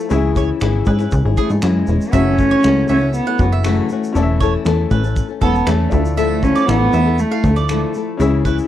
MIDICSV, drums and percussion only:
0, 0, Header, 1, 2, 480
1, 0, Start_track
1, 0, Tempo, 505476
1, 104, Time_signature, 4, 2, 24, 8
1, 8238, End_track
2, 0, Start_track
2, 0, Title_t, "Drums"
2, 99, Note_on_c, 9, 82, 63
2, 194, Note_off_c, 9, 82, 0
2, 343, Note_on_c, 9, 36, 98
2, 346, Note_on_c, 9, 82, 53
2, 438, Note_off_c, 9, 36, 0
2, 441, Note_off_c, 9, 82, 0
2, 577, Note_on_c, 9, 82, 63
2, 582, Note_on_c, 9, 26, 98
2, 672, Note_off_c, 9, 82, 0
2, 677, Note_off_c, 9, 26, 0
2, 813, Note_on_c, 9, 82, 54
2, 824, Note_on_c, 9, 36, 100
2, 908, Note_off_c, 9, 82, 0
2, 919, Note_off_c, 9, 36, 0
2, 938, Note_on_c, 9, 26, 35
2, 942, Note_on_c, 9, 82, 53
2, 1033, Note_off_c, 9, 26, 0
2, 1037, Note_off_c, 9, 82, 0
2, 1058, Note_on_c, 9, 82, 78
2, 1066, Note_on_c, 9, 36, 107
2, 1153, Note_off_c, 9, 82, 0
2, 1161, Note_off_c, 9, 36, 0
2, 1302, Note_on_c, 9, 82, 50
2, 1304, Note_on_c, 9, 36, 94
2, 1397, Note_off_c, 9, 82, 0
2, 1399, Note_off_c, 9, 36, 0
2, 1420, Note_on_c, 9, 82, 47
2, 1515, Note_off_c, 9, 82, 0
2, 1539, Note_on_c, 9, 26, 109
2, 1540, Note_on_c, 9, 82, 66
2, 1634, Note_off_c, 9, 26, 0
2, 1635, Note_off_c, 9, 82, 0
2, 1776, Note_on_c, 9, 82, 43
2, 1871, Note_off_c, 9, 82, 0
2, 1912, Note_on_c, 9, 82, 56
2, 2007, Note_off_c, 9, 82, 0
2, 2023, Note_on_c, 9, 82, 68
2, 2026, Note_on_c, 9, 36, 93
2, 2118, Note_off_c, 9, 82, 0
2, 2121, Note_off_c, 9, 36, 0
2, 2266, Note_on_c, 9, 36, 95
2, 2267, Note_on_c, 9, 82, 53
2, 2361, Note_off_c, 9, 36, 0
2, 2361, Note_off_c, 9, 82, 0
2, 2504, Note_on_c, 9, 82, 59
2, 2510, Note_on_c, 9, 26, 101
2, 2599, Note_off_c, 9, 82, 0
2, 2605, Note_off_c, 9, 26, 0
2, 2735, Note_on_c, 9, 82, 52
2, 2830, Note_off_c, 9, 82, 0
2, 2978, Note_on_c, 9, 82, 74
2, 3073, Note_off_c, 9, 82, 0
2, 3217, Note_on_c, 9, 82, 50
2, 3221, Note_on_c, 9, 36, 97
2, 3312, Note_off_c, 9, 82, 0
2, 3316, Note_off_c, 9, 36, 0
2, 3461, Note_on_c, 9, 26, 115
2, 3461, Note_on_c, 9, 82, 72
2, 3556, Note_off_c, 9, 26, 0
2, 3556, Note_off_c, 9, 82, 0
2, 3696, Note_on_c, 9, 82, 47
2, 3791, Note_off_c, 9, 82, 0
2, 3835, Note_on_c, 9, 82, 58
2, 3930, Note_off_c, 9, 82, 0
2, 3946, Note_on_c, 9, 82, 67
2, 4041, Note_off_c, 9, 82, 0
2, 4184, Note_on_c, 9, 36, 100
2, 4192, Note_on_c, 9, 82, 48
2, 4279, Note_off_c, 9, 36, 0
2, 4287, Note_off_c, 9, 82, 0
2, 4422, Note_on_c, 9, 82, 61
2, 4427, Note_on_c, 9, 26, 107
2, 4517, Note_off_c, 9, 82, 0
2, 4522, Note_off_c, 9, 26, 0
2, 4665, Note_on_c, 9, 36, 102
2, 4665, Note_on_c, 9, 82, 54
2, 4759, Note_off_c, 9, 36, 0
2, 4760, Note_off_c, 9, 82, 0
2, 4785, Note_on_c, 9, 82, 48
2, 4880, Note_off_c, 9, 82, 0
2, 4904, Note_on_c, 9, 36, 110
2, 4904, Note_on_c, 9, 82, 83
2, 4999, Note_off_c, 9, 36, 0
2, 4999, Note_off_c, 9, 82, 0
2, 5143, Note_on_c, 9, 36, 92
2, 5147, Note_on_c, 9, 82, 50
2, 5238, Note_off_c, 9, 36, 0
2, 5242, Note_off_c, 9, 82, 0
2, 5271, Note_on_c, 9, 82, 47
2, 5366, Note_off_c, 9, 82, 0
2, 5383, Note_on_c, 9, 26, 113
2, 5383, Note_on_c, 9, 82, 80
2, 5477, Note_off_c, 9, 26, 0
2, 5478, Note_off_c, 9, 82, 0
2, 5616, Note_on_c, 9, 82, 42
2, 5623, Note_on_c, 9, 36, 101
2, 5711, Note_off_c, 9, 82, 0
2, 5718, Note_off_c, 9, 36, 0
2, 5749, Note_on_c, 9, 82, 64
2, 5844, Note_off_c, 9, 82, 0
2, 5867, Note_on_c, 9, 82, 68
2, 5962, Note_off_c, 9, 82, 0
2, 6104, Note_on_c, 9, 36, 88
2, 6112, Note_on_c, 9, 82, 57
2, 6199, Note_off_c, 9, 36, 0
2, 6207, Note_off_c, 9, 82, 0
2, 6233, Note_on_c, 9, 82, 53
2, 6328, Note_off_c, 9, 82, 0
2, 6348, Note_on_c, 9, 82, 61
2, 6353, Note_on_c, 9, 26, 100
2, 6442, Note_off_c, 9, 82, 0
2, 6448, Note_off_c, 9, 26, 0
2, 6581, Note_on_c, 9, 82, 55
2, 6676, Note_off_c, 9, 82, 0
2, 6822, Note_on_c, 9, 82, 75
2, 6917, Note_off_c, 9, 82, 0
2, 7063, Note_on_c, 9, 36, 99
2, 7065, Note_on_c, 9, 82, 52
2, 7158, Note_off_c, 9, 36, 0
2, 7160, Note_off_c, 9, 82, 0
2, 7184, Note_on_c, 9, 82, 42
2, 7279, Note_off_c, 9, 82, 0
2, 7304, Note_on_c, 9, 26, 115
2, 7305, Note_on_c, 9, 82, 71
2, 7399, Note_off_c, 9, 26, 0
2, 7400, Note_off_c, 9, 82, 0
2, 7540, Note_on_c, 9, 82, 46
2, 7635, Note_off_c, 9, 82, 0
2, 7789, Note_on_c, 9, 82, 67
2, 7884, Note_off_c, 9, 82, 0
2, 8025, Note_on_c, 9, 36, 90
2, 8032, Note_on_c, 9, 82, 57
2, 8120, Note_off_c, 9, 36, 0
2, 8127, Note_off_c, 9, 82, 0
2, 8151, Note_on_c, 9, 82, 55
2, 8238, Note_off_c, 9, 82, 0
2, 8238, End_track
0, 0, End_of_file